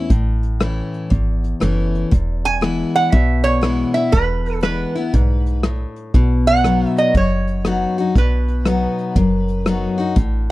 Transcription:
Already playing: C#4
0.10 A1 A2, kick, closed hi-hat
0.43 closed hi-hat
0.60 E3 A3 C#4 E4, cross-stick, closed hi-hat
0.94 closed hi-hat
1.10 G#1 E2, kick, closed hi-hat
1.44 closed hi-hat
1.60 F#1 E3 A3 C#4 E4, cross-stick, closed hi-hat
1.95 closed hi-hat
2.11 E1 E2, kick, closed hi-hat
2.45 G#5, closed hi-hat
2.61 E3 G#3 B3 E4, cross-stick, closed hi-hat
2.96 F#5
3.12 B1 B2 E5, kick, closed hi-hat
3.44 C#5, closed hi-hat
3.61 E3 G#3 B3 E4, cross-stick, closed hi-hat
3.94 B3 E4 E5, closed hi-hat
4.12 E1 E2 B4, kick, closed hi-hat
4.46 closed hi-hat
4.62 E3 G#3 B3 E4 B4, cross-stick, closed hi-hat
4.95 B3 E4, closed hi-hat
5.14 B1 G#2, kick, closed hi-hat
5.46 closed hi-hat
5.63 A2, cross-stick, closed hi-hat
5.96 closed hi-hat
6.14 B1 B2, kick, closed hi-hat
6.47 F#5
6.64 F#3 B3 D#4 F#4, cross-stick, closed hi-hat
6.96 D#5, closed hi-hat
7.14 F#1 F#2 C#5, kick, closed hi-hat
7.47 closed hi-hat
7.65 F#3 B3 D#4 F#4, cross-stick, closed hi-hat
7.98 D#4 F#4, closed hi-hat
8.15 B1 B2 B4, kick, closed hi-hat
8.48 closed hi-hat
8.65 F#3 B3 D#4 F#4, cross-stick, closed hi-hat
8.98 closed hi-hat
9.15 F#1 F#2, kick, closed hi-hat
9.48 closed hi-hat
9.66 F#3 B3 D#4 F#4, cross-stick, closed hi-hat
9.98 D#4 F#4, closed hi-hat
10.16 A1 A2, kick, closed hi-hat

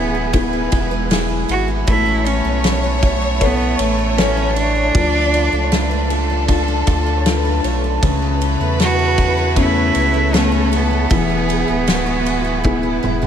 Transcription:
Already playing: D1 E2 E3 G#3 B3 E4 G#4 B4 G#5
0.15 B3
0.33 E2 B3 E4 G#4 B4, kick, ride
0.53 B3
0.72 E1 E4, kick, ride
0.91 G#3
1.10 B3 E4 G#4, snare, ride
1.29 G#3
1.48 G#1 E4 F#4, ride
1.68 B3
1.87 A1 A2 A3 E4 C#5 A5, kick, ride
2.06 C#4
2.25 C#4 E4, ride
2.45 B1 B3
2.64 C#4, snare, ride
2.84 B3
3.02 E4, kick, ride
3.22 C#4
3.40 A2 B3 A4 B4 C#5, kick, ride
3.61 C#4
3.79 A1 A3 E4, ride
3.99 B3
4.17 C#4 A4 B4 C#5, snare, ride
4.37 B3
4.55 D4 E4, ride
4.76 C#4
4.94 D2 F3 D4 F4 A4 D5, kick, ride
5.15 D4
5.34 F4, ride
5.52 C#2 A3
5.64 C#5
5.71 D4 B4, snare, ride
5.91 A3
6.09 F4 A4, ride
6.30 D4
6.48 D4 F4 A4, kick, ride
6.68 D4
6.87 D2 F4, kick, ride
7.06 A3
7.19 C#5
7.25 D4 F4 A4 B4, snare, ride
7.45 A3
7.64 B1 F4 C#5, ride
7.84 D4
8.01 C#2 C#3 E4 B4 C#5, kick, ride
8.22 B3
8.41 E4, ride
8.60 E2 A3
8.80 B3 F#4, snare, ride
8.99 A3
9.18 E4, kick, ride
9.37 B3
9.56 C#3 A3 B3 C#4 E4, kick, ride
9.76 B3
9.94 C#2 E4, ride
10.14 A3
10.33 A3 B3 C#4 A4, snare, ride
10.52 A3
10.72 B3 E4, ride
10.91 B3
11.10 E1 E2 E3 G#4 B4 G#5, kick, ride
11.30 B3
11.49 E4, ride
11.68 D1 G#3
11.87 B3 F#4, snare, ride
12.06 G#3
12.26 E4, ride
12.45 B3
12.63 E2 B3 E4 G#4, kick, high tom
12.83 B3
13.03 E1 E4, mid tom
13.22 G#3, mid tom

